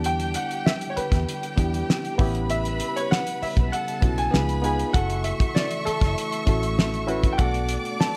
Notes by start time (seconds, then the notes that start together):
Already playing: E2 D3 G3 B3 D4 E4 G4 G5
0.04 G5, closed hi-hat
0.20 closed hi-hat
0.34 F#5, closed hi-hat
0.51 closed hi-hat
0.66 E5, snare
0.81 closed hi-hat
0.90 C#5
0.96 B4, muted fingered electric bass stroke, closed hi-hat
1.12 E2, kick, snare, closed hi-hat
1.26 G4 G5, closed hi-hat
1.43 closed hi-hat
1.56 E2 B3 D4 E4 G4, kick, closed hi-hat
1.74 closed hi-hat
1.90 snare
2.05 closed hi-hat
2.18 A1 C#3 G3 B3 C#4 E4 G4 B4 B5, kick, open hi-hat
2.35 closed hi-hat
2.50 E5, closed hi-hat
2.65 closed hi-hat
2.80 closed hi-hat
2.96 C#5, closed hi-hat
3.11 F#5, snare
3.27 closed hi-hat
3.42 E5, muted fingered electric bass stroke, open hi-hat
3.57 B1, kick, closed hi-hat
3.72 A4 F#5 A5, closed hi-hat
3.88 closed hi-hat
4.01 B1 B3 C#4 E4 F#4, kick, closed hi-hat
4.18 G#5, closed hi-hat
4.31 C#2 B3 D#4 F4 G#4 B4 B5, snare
4.49 closed hi-hat
4.62 B3 D#4 F4 G#4 G#5, closed hi-hat
4.79 closed hi-hat
4.93 F#1 C#3 E3 A3 E4 F#4 A4 E5 F#5 C#6, kick, closed hi-hat
5.10 closed hi-hat
5.24 E5, closed hi-hat
5.40 kick, closed hi-hat
5.55 D5, snare
5.71 closed hi-hat
5.85 A4, muted fingered electric bass stroke, closed hi-hat
6.01 F#1, kick, snare, closed hi-hat
6.18 closed hi-hat
6.32 closed hi-hat
6.46 A1 C#4 E4 F#4 A4, kick, closed hi-hat
6.63 closed hi-hat
6.79 snare
6.94 closed hi-hat
7.07 C#4 E4 F#4 B4, closed hi-hat
7.23 kick, closed hi-hat
7.33 G5
7.37 B1 B2 B3 D4 F#4 A4 D5 F#5 D6, kick, closed hi-hat
7.54 closed hi-hat
7.69 closed hi-hat
7.85 closed hi-hat
8.00 A5, snare